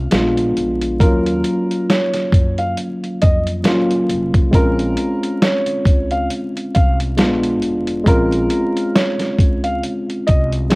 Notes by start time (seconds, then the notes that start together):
0.11 A#1 G#3 B3 D4 F4, snare, closed hi-hat
0.37 closed hi-hat
0.57 A#1, closed hi-hat
0.82 closed hi-hat
0.99 D#2 F3 A#3 C#4 F4 A#4, kick, closed hi-hat
1.06 F#3
1.26 closed hi-hat
1.44 closed hi-hat
1.71 closed hi-hat
1.90 C#5, snare, closed hi-hat
2.14 snare, closed hi-hat
2.32 F#2, kick, closed hi-hat
2.58 F5, closed hi-hat
2.77 closed hi-hat
3.04 closed hi-hat
3.22 F2 D#5, kick, closed hi-hat
3.47 closed hi-hat
3.64 F#3 A#3 C#4, snare, closed hi-hat
3.68 F4
3.91 closed hi-hat
4.09 F1, closed hi-hat
4.34 kick, closed hi-hat
4.51 A#1 G#3 C4 C#4 F4 A#4, kick, closed hi-hat
4.79 closed hi-hat
4.97 closed hi-hat
5.23 closed hi-hat
5.42 C#5, snare, closed hi-hat
5.66 closed hi-hat
5.85 C#2, kick, closed hi-hat
6.11 F5, closed hi-hat
6.30 closed hi-hat
6.57 closed hi-hat
6.75 C2 F5, kick, closed hi-hat
7.00 closed hi-hat
7.17 A#1 G#3 B3 D4 F4, snare, closed hi-hat
7.43 closed hi-hat
7.62 F1, closed hi-hat
7.87 closed hi-hat
8.04 A#1 G#3 C4 C#4 A#4, kick, closed hi-hat
8.08 F4
8.32 closed hi-hat
8.50 closed hi-hat
8.76 closed hi-hat
8.95 C#5, snare, closed hi-hat
9.19 snare, closed hi-hat
9.39 C#2, kick, closed hi-hat
9.64 F5, closed hi-hat
9.83 closed hi-hat
10.10 closed hi-hat
10.27 C2 D#5, kick, closed hi-hat
10.52 closed hi-hat
10.70 G#3 C4, snare, closed hi-hat